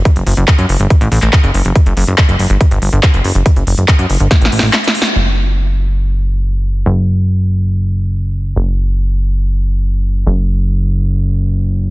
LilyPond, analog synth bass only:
\new Staff \with { instrumentName = "Analog synth bass" } { \clef bass \time 4/4 \key fis \phrygian \tempo 4 = 141 r16 fis,,16 fis,,16 fis,,16 r16 fis,16 fis,,16 g,,16 r16 a,,16 a,,16 a,,16 r16 fis,,16 fis,,16 fis,,16 | r16 fis,,16 fis,,16 fis,,16 r16 fis,,16 fis,,16 g,,16 r16 g,,16 g,,16 g,,16 r16 fis,,16 fis,,16 fis,,16 | r16 fis,,16 fis,,16 fis,,16 r16 fis,16 fis,,16 g,,16 r16 a,,16 a,,16 a,,16 r4 | fis,,1 |
fis,,1 | fis,,1 | fis,,1 | }